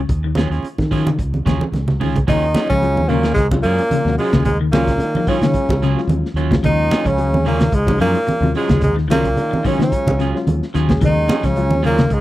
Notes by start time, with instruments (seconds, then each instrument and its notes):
Already playing: clean electric guitar C#3
0.09 fingered electric bass D#2, kick, closed hi-hat, high conga
0.24 clean electric guitar D#3
0.35 clean electric guitar D#3 F#3 C#4 F4 G#4, snare, closed hi-hat, high conga
0.50 fingered electric bass D#2, clean electric guitar C#4 F4 G#4, snare, closed hi-hat
0.63 muted fingered electric bass stroke, closed hi-hat, high conga
0.78 fingered electric bass D#3, kick, snare, closed hi-hat, high conga
0.91 clean electric guitar D#3 F#3 C#4 F4 G#4, kick, open hi-hat
1.07 clean electric guitar C#3, closed hi-hat, high conga
1.18 fingered electric bass C#2, kick, closed hi-hat, high conga
1.34 closed hi-hat, high conga
1.46 fingered electric bass D#2, clean electric guitar C#3 F#3 C#4 F4 G#4, kick, snare, closed hi-hat, high conga
1.61 high conga
1.72 fingered electric bass C#2, snare, closed hi-hat, high conga
1.88 snare, low conga
2.00 clean electric guitar D#3 C#4 F4 G#4, muted clean electric guitar stroke, open hi-hat, low conga
2.16 kick, closed hi-hat, low conga
2.27 fingered electric bass D#2, trombone D#3, clean electric guitar D#3 F#3 C#4 F4 G#4, tenor saxophone D#4, kick, closed hi-hat, high conga, low conga
2.55 clean electric guitar F#3 C#4 F4 G#4, snare, closed hi-hat, high conga
2.70 fingered electric bass C#2, trombone C#3, clean electric guitar F3, tenor saxophone C#4, kick, closed hi-hat
2.82 reed electric piano F#3 G#3 C#4 F4, closed hi-hat, high conga
2.96 fingered electric bass D#2, high conga
3.09 trombone A#2, clean electric guitar C#3 F#3 C#4 F4, tenor saxophone A#3, muted clean electric guitar stroke, closed hi-hat
3.23 clean electric guitar D#3 C#4 F4 G#4, snare, closed hi-hat
3.34 fingered electric bass C#2, trombone G#2, tenor saxophone G#3, kick, snare, closed hi-hat
3.51 reed electric piano F#3 G#3 C#4 F4, kick, high conga
3.63 fingered electric bass F#2, trombone A#2, clean electric guitar F#3 C#4 F4 G#4, tenor saxophone A#3, closed hi-hat
3.78 closed hi-hat
3.90 clean electric guitar C#3, muted fingered electric bass stroke, closed hi-hat, high conga
4.05 fingered electric bass D#2, clean electric guitar C3, reed electric piano F#3 G#3 C#4 F#4, snare
4.18 trombone G#2, clean electric guitar F#3 C#4 F4 G#4, tenor saxophone G#3, open hi-hat
4.32 fingered electric bass D#2, clean electric guitar C#3 C#4 F4 G#4, kick, snare, closed hi-hat, high conga, low conga
4.45 trombone G#2, tenor saxophone G#3, kick, closed hi-hat, high conga, low conga
4.61 clean electric guitar D#3
4.72 fingered electric bass C#2, trombone A#2, clean electric guitar D#3 F#3 C#4 F4 G#4, reed electric piano F#3 G#3 C#4 F4, tenor saxophone A#3, snare, closed hi-hat, high conga
4.87 kick, snare, closed hi-hat
4.98 fingered electric bass D#3, closed hi-hat, high conga
5.15 clean electric guitar F3, high conga
5.27 trombone C#3, clean electric guitar D#3 F#3 C#4 F4 G#4, reed electric piano F#3 G#3 C#4 F4, tenor saxophone C#4, kick, open hi-hat
5.41 trombone C#3, clean electric guitar C#3, fingered electric bass D#3, tenor saxophone C#4, snare, closed hi-hat
5.53 kick, closed hi-hat
5.69 fingered electric bass C#2, kick, high conga
5.82 clean electric guitar C#3 F#3 C#4 F4 G#4, snare, closed hi-hat
5.97 reed electric piano F#3 G#3 C#4 F4, snare
6.07 fingered electric bass D#2, closed hi-hat, high conga
6.25 snare
6.34 fingered electric bass D#2, clean electric guitar F#3 C#4 F4, closed hi-hat
6.38 clean electric guitar D#3
6.51 reed electric piano F#3 G#3 C#4 F4, kick, snare, high conga, low conga
6.63 fingered electric bass D#2, clean electric guitar D#3, trombone D#3, tenor saxophone D#4, kick, closed hi-hat, high conga, low conga
6.91 clean electric guitar F#3 C#4 F4 G#4, snare, closed hi-hat, high conga
7.05 fingered electric bass C#2, trombone C#3, clean electric guitar F3, tenor saxophone C#4, kick, closed hi-hat
7.18 reed electric piano F#3 G#3 C#4 G#4, closed hi-hat, high conga
7.31 fingered electric bass D#2, high conga
7.45 trombone A#2, clean electric guitar C#3 F#3 C#4 F4 G#4, tenor saxophone A#3, closed hi-hat
7.60 clean electric guitar D#3, snare, closed hi-hat, low conga
7.72 fingered electric bass C#2, trombone G#2, tenor saxophone G#3, kick, closed hi-hat
7.87 reed electric piano F#3 G#3 C#4 D#4, kick, high conga
7.99 fingered electric bass F#2, trombone A#2, clean electric guitar F3 F#3 C#4 F4 G#4, tenor saxophone A#3, snare, closed hi-hat
8.15 closed hi-hat
8.27 muted clean electric guitar stroke, muted fingered electric bass stroke, closed hi-hat, high conga
8.40 fingered electric bass D#2, clean electric guitar C3, reed electric piano F#3 G#3 C#4 F4, high conga
8.55 trombone G#2, clean electric guitar F#3 C#4 F4 G#4, tenor saxophone G#3, open hi-hat
8.68 fingered electric bass D#2, clean electric guitar C#3 C#4 F4 G#4, kick, snare, closed hi-hat, high conga, low conga
8.81 trombone G#2, tenor saxophone G#3, kick, closed hi-hat, high conga, low conga
8.96 clean electric guitar D#3, snare
9.08 fingered electric bass C#2, trombone A#2, clean electric guitar D#3 F#3 C#4 F4 G#4, reed electric piano F#3 G#3 C#4 F4, tenor saxophone A#3, snare, closed hi-hat, high conga
9.25 kick, closed hi-hat
9.37 fingered electric bass D#3, closed hi-hat, high conga
9.51 muted clean electric guitar stroke, high conga
9.64 trombone C#3, clean electric guitar D#3 F#3 C#4 F4 G#4, reed electric piano F#3 G#3 C#4 F4, tenor saxophone C#4, kick, open hi-hat
9.78 clean electric guitar C#3, fingered electric bass D#3, snare, closed hi-hat
9.83 trombone C#3, tenor saxophone C#4
9.92 kick, closed hi-hat
10.07 fingered electric bass C#2, kick, high conga
10.19 clean electric guitar C#3 F#3 C#4 F4 G#4, snare, closed hi-hat
10.35 reed electric piano F#3 G#3 C#4 F4, snare
10.47 fingered electric bass D#2, closed hi-hat, high conga
10.63 snare
10.74 fingered electric bass D#2, clean electric guitar D#3 F#3 C#4 F4 G#4, snare, closed hi-hat
10.89 reed electric piano F#3 G#3 C#4 G#4, kick, snare, high conga, low conga
11.01 fingered electric bass D#2, clean electric guitar D#3, trombone D#3, kick, closed hi-hat, high conga, low conga
11.05 tenor saxophone D#4
11.28 clean electric guitar F#3 C#4 F4 G#4, snare, closed hi-hat, high conga
11.43 fingered electric bass C#2, trombone C#3, clean electric guitar F3, tenor saxophone C#4, kick, snare, closed hi-hat
11.56 reed electric piano F#3 G#3 C#4 F4, closed hi-hat, high conga
11.71 fingered electric bass D#2, high conga
11.82 trombone A#2, clean electric guitar C#3 F#3 C#4 F4 G#4, tenor saxophone A#3, closed hi-hat
11.98 clean electric guitar C#3, snare, closed hi-hat, low conga
12.10 fingered electric bass C#2, trombone G#2, kick, closed hi-hat
12.14 tenor saxophone G#3